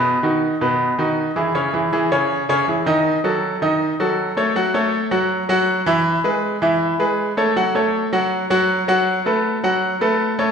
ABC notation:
X:1
M:4/4
L:1/8
Q:1/4=160
K:F#dor
V:1 name="Grand piano"
[B,,B,B] [D,DF]2 [B,,B,B]2 [D,DF]2 [E,EG] | [C,Cc] [E,EG] [E,EG] [C,Cc]2 [C,Cc] [E,EG] [D,Dd]- | [D,Dd] [F,FA]2 [D,Dd]2 [F,FA]2 [A,Ac] | [F,Ff] [A,Ac]2 [F,Ff]2 [F,Ff]2 [E,Ee]- |
[E,Ee] [G,GB]2 [E,Ee]2 [G,GB]2 [A,Ac] | [F,Ff] [A,Ac]2 [F,Ff]2 [F,Ff]2 [F,Ff]- | [F,Ff] [A,AB]2 [F,Ff]2 [A,AB]2 [A,Ac] |]